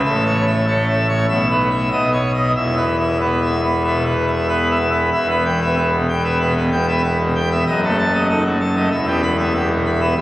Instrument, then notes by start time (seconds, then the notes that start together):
pipe organ
0.05 A1 A2 E5
0.26 C#5
0.47 E5
0.67 A3 C#5
0.88 E5
1.09 C#5
1.29 B1 B2 E5
1.51 B4
1.71 E5
1.92 B1 B2 D#5
2.12 C#5
2.34 D#5
2.56 E1 E2 E5
2.77 B4
2.98 E5
3.20 B3 B4
3.42 E5
3.63 B4
3.84 B2 E5
4.06 B4
4.27 E5
4.48 B3 B4
4.70 E5
4.91 B4
5.13 E1 E2 E5
5.29 B3 B4
5.45 G5
5.62 B3 E5
5.76 B4
5.92 B2
6.09 G5
6.24 B3 E5
6.40 B2 B4
6.55 B2 B3
6.72 G5
6.88 B3 E5
7.04 B4
7.19 B2
7.35 G5
7.51 B3 E5
7.67 F#1 F#2 D#5
7.83 A3 A4
7.98 A5
8.13 A3 D#5
8.29 D#4 A4
8.45 F#3
8.61 A5
8.76 A3 D#5
8.91 E1 E2 E5
9.07 B3 G4
9.23 B5
9.39 B3 E5
9.55 G4
9.71 B2
9.86 B5
10.01 B3 E5
10.17 C2 C3 E5